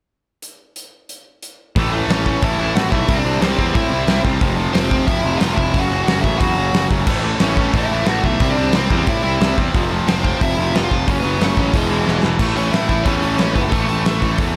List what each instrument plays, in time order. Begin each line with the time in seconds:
0.42 closed hi-hat
0.76 closed hi-hat
1.09 closed hi-hat
1.42 closed hi-hat
1.76 picked electric bass A1, distorted electric guitar A2 E3 A3, kick, open hi-hat
1.92 distorted electric guitar A2 E3 A3
2.08 picked electric bass A1, distorted electric guitar A2 E3 A3, lead electric guitar C#4 C#5, snare, open hi-hat
2.26 distorted electric guitar A2 E3 A3, kick
2.42 picked electric bass A1, distorted electric guitar A2 E3 A3, lead electric guitar E4 E5, kick, open hi-hat
2.58 picked electric bass A1, distorted electric guitar A2 E3 A3
2.75 picked electric bass A1, distorted electric guitar A2 E3 A3, lead electric guitar F#4 F#5, snare, open hi-hat
2.90 picked electric bass B1, distorted electric guitar A2 E3 A3, lead electric guitar E4 E5, kick
3.08 picked electric bass C2, distorted electric guitar C3 G3 C4, kick, open hi-hat
3.15 lead electric guitar D4 D5
3.25 picked electric bass C2, distorted electric guitar C3 G3 C4
3.40 picked electric bass C2, distorted electric guitar C3 G3 C4, lead electric guitar C4 C5, snare, open hi-hat
3.57 picked electric bass E2, distorted electric guitar C3 G3 C4, lead electric guitar C4 C5, kick
3.74 picked electric bass A2, distorted electric guitar C3 G3 C4, lead electric guitar E4 E5, kick, open hi-hat
3.90 picked electric bass C2, distorted electric guitar C3 G3 C4
4.07 picked electric bass C2, distorted electric guitar C3 G3 C4, snare, open hi-hat
4.25 picked electric bass C2, distorted electric guitar C3 G3 C4, kick
4.41 picked electric bass F1, distorted electric guitar F2 C3 F3, kick, open hi-hat
4.57 distorted electric guitar F2 C3 F3
4.73 picked electric bass F1, distorted electric guitar F2 C3 F3, lead electric guitar C4 C5, snare, open hi-hat
4.89 distorted electric guitar F2 C3 F3, kick
5.06 picked electric bass F1, distorted electric guitar F2 C3 F3, lead electric guitar E4 E5, kick, open hi-hat
5.23 picked electric bass F1, distorted electric guitar F2 C3 F3
5.38 picked electric bass F1, distorted electric guitar F2 C3 F3, lead electric guitar F4 F5, snare, open hi-hat
5.54 picked electric bass F1, distorted electric guitar F2 C3 F3, lead electric guitar E4 E5, kick
5.72 picked electric bass F#1, distorted electric guitar F#2 C#3 F#3, kick, open hi-hat
5.79 lead electric guitar F#4 F#5
5.89 picked electric bass F#1, distorted electric guitar F#2 C#3 F#3
6.04 distorted electric guitar F#2 C#3, lead electric guitar F#4 F#5, open hi-hat
6.08 picked electric bass F#1, distorted electric guitar F#3, snare
6.21 picked electric bass A1, distorted electric guitar F#2 C#3 F#3, lead electric guitar E4 E5, kick
6.38 picked electric bass E2, distorted electric guitar F#2 C#3 F#3, lead electric guitar F#4 F#5, kick, open hi-hat
6.56 picked electric bass F#1, distorted electric guitar F#2 C#3 F#3
6.73 picked electric bass F#1, distorted electric guitar F#2 C#3 F#3, snare, open hi-hat
6.89 picked electric bass F#1, distorted electric guitar F#2 C#3 F#3, kick
7.07 picked electric bass A1, distorted electric guitar A2 E3 A3, kick, crash
7.23 distorted electric guitar A2 E3 A3
7.39 picked electric bass A1, distorted electric guitar A2 E3 A3, lead electric guitar C#4 C#5, snare, open hi-hat
7.57 distorted electric guitar A2 E3 A3, kick
7.73 picked electric bass A1, distorted electric guitar A2 E3 A3, lead electric guitar E4 E5, kick, open hi-hat
7.90 picked electric bass A1, distorted electric guitar A2 E3 A3
8.06 picked electric bass A1, distorted electric guitar A2 E3 A3, lead electric guitar F#4 F#5, snare, open hi-hat
8.24 picked electric bass B1, distorted electric guitar A2 E3 A3, lead electric guitar E4 E5, kick
8.40 picked electric bass C2, distorted electric guitar C3 G3 C4, kick, open hi-hat
8.50 lead electric guitar D4 D5
8.57 picked electric bass C2, distorted electric guitar C3 G3 C4
8.72 picked electric bass C2, distorted electric guitar C3 G3 C4, lead electric guitar C4 C5, snare, open hi-hat
8.90 picked electric bass E2, distorted electric guitar C3 G3 C4, lead electric guitar C4 C5, kick
9.06 picked electric bass A2, distorted electric guitar C3 G3 C4, lead electric guitar E4 E5, kick, open hi-hat
9.23 picked electric bass C2, distorted electric guitar C3 G3 C4
9.40 picked electric bass C2, distorted electric guitar C3 G3 C4, snare, open hi-hat
9.58 picked electric bass E2, distorted electric guitar C3 G3 C4, kick
9.75 picked electric bass F1, distorted electric guitar F2 C3 F3, kick, open hi-hat
9.92 distorted electric guitar F2 C3 F3
10.07 picked electric bass F1, distorted electric guitar F2 C3 F3, lead electric guitar C4 C5, snare, open hi-hat
10.23 distorted electric guitar F2 C3 F3, kick
10.41 picked electric bass F1, distorted electric guitar F2 C3 F3, lead electric guitar E4 E5, kick, open hi-hat
10.57 picked electric bass F1, distorted electric guitar F2 C3 F3
10.74 picked electric bass F1, distorted electric guitar F2 C3 F3, lead electric guitar F4 F5, snare, open hi-hat
10.84 lead electric guitar F4 F5
10.90 picked electric bass F1, distorted electric guitar F2 C3 F3, kick
11.07 picked electric bass F#1, distorted electric guitar F#2 C#3 F#3, lead electric guitar C#4 C#5, kick, open hi-hat
11.20 picked electric bass F#1, distorted electric guitar F#3, lead electric guitar B3 B4
11.24 distorted electric guitar F#2 C#3
11.39 picked electric bass F#1, distorted electric guitar F#2 C#3 F#3, lead electric guitar A3 A4, snare, open hi-hat
11.57 picked electric bass A1, distorted electric guitar F#2 C#3 F#3, lead electric guitar C#4 C#5, kick
11.73 picked electric bass E1, distorted electric guitar E2 B2 E3, lead electric guitar G#3 G#4, kick, open hi-hat
11.90 picked electric bass E1, distorted electric guitar E2 B2 E3
12.06 picked electric bass E1, distorted electric guitar E2 B2 E3, snare
12.23 picked electric bass E1, distorted electric guitar E2 B2 E3, snare
12.39 picked electric bass A1, distorted electric guitar A2 E3 A3, lead electric guitar A3 A4, kick, crash
12.56 picked electric bass A1, distorted electric guitar A2 E3 A3, lead electric guitar C#4 C#5, open hi-hat
12.71 picked electric bass A1, distorted electric guitar A2 E3 A3, lead electric guitar E4 E5, snare, open hi-hat
12.89 distorted electric guitar A2 E3 A3, kick, open hi-hat
13.03 picked electric bass E2, distorted electric guitar A2 E3, lead electric guitar C#4 C#5, kick, open hi-hat
13.07 distorted electric guitar A3
13.21 picked electric bass A1, distorted electric guitar A2 E3 A3, open hi-hat
13.37 picked electric bass A1, distorted electric guitar A2 E3 A3, lead electric guitar C#5, snare, open hi-hat
13.42 lead electric guitar C#4
13.55 picked electric bass F#1, distorted electric guitar A2 E3 A3, lead electric guitar B3 B4, kick, open hi-hat
13.69 picked electric bass A1, distorted electric guitar A2 E3 A3, lead electric guitar A3 A4, kick, open hi-hat
13.88 picked electric bass A1, distorted electric guitar A2 E3 A3, open hi-hat
14.05 picked electric bass A1, distorted electric guitar A2 E3 A3, snare, open hi-hat
14.21 distorted electric guitar A2 E3 A3, kick, open hi-hat
14.38 picked electric bass E2, distorted electric guitar A2 E3 A3, kick, open hi-hat